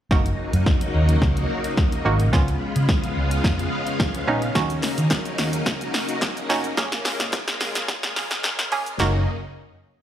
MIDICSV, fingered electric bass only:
0, 0, Header, 1, 2, 480
1, 0, Start_track
1, 0, Key_signature, 6, "major"
1, 0, Tempo, 555556
1, 96, Time_signature, 4, 2, 24, 8
1, 8657, End_track
2, 0, Start_track
2, 0, Title_t, "Fingered electric bass"
2, 0, Program_c, 0, 33
2, 94, Note_on_c, 0, 30, 99
2, 280, Note_off_c, 0, 30, 0
2, 462, Note_on_c, 0, 42, 90
2, 549, Note_off_c, 0, 42, 0
2, 816, Note_on_c, 0, 39, 89
2, 1000, Note_off_c, 0, 39, 0
2, 1051, Note_on_c, 0, 37, 92
2, 1238, Note_off_c, 0, 37, 0
2, 1776, Note_on_c, 0, 32, 101
2, 2014, Note_off_c, 0, 32, 0
2, 2014, Note_on_c, 0, 37, 100
2, 2200, Note_off_c, 0, 37, 0
2, 2383, Note_on_c, 0, 49, 92
2, 2470, Note_off_c, 0, 49, 0
2, 2735, Note_on_c, 0, 37, 88
2, 2920, Note_off_c, 0, 37, 0
2, 2974, Note_on_c, 0, 41, 93
2, 3159, Note_off_c, 0, 41, 0
2, 3453, Note_on_c, 0, 37, 95
2, 3639, Note_off_c, 0, 37, 0
2, 3694, Note_on_c, 0, 34, 90
2, 3879, Note_off_c, 0, 34, 0
2, 3934, Note_on_c, 0, 39, 110
2, 4119, Note_off_c, 0, 39, 0
2, 4302, Note_on_c, 0, 51, 92
2, 4389, Note_off_c, 0, 51, 0
2, 4654, Note_on_c, 0, 39, 84
2, 4840, Note_off_c, 0, 39, 0
2, 5613, Note_on_c, 0, 29, 97
2, 5799, Note_off_c, 0, 29, 0
2, 5854, Note_on_c, 0, 34, 116
2, 6040, Note_off_c, 0, 34, 0
2, 6219, Note_on_c, 0, 46, 96
2, 6307, Note_off_c, 0, 46, 0
2, 6572, Note_on_c, 0, 34, 89
2, 6758, Note_off_c, 0, 34, 0
2, 6942, Note_on_c, 0, 46, 95
2, 7029, Note_off_c, 0, 46, 0
2, 7055, Note_on_c, 0, 41, 100
2, 7153, Note_off_c, 0, 41, 0
2, 7183, Note_on_c, 0, 34, 93
2, 7367, Note_off_c, 0, 34, 0
2, 7420, Note_on_c, 0, 32, 92
2, 7508, Note_off_c, 0, 32, 0
2, 7534, Note_on_c, 0, 37, 105
2, 7719, Note_off_c, 0, 37, 0
2, 7776, Note_on_c, 0, 30, 105
2, 7999, Note_off_c, 0, 30, 0
2, 8657, End_track
0, 0, End_of_file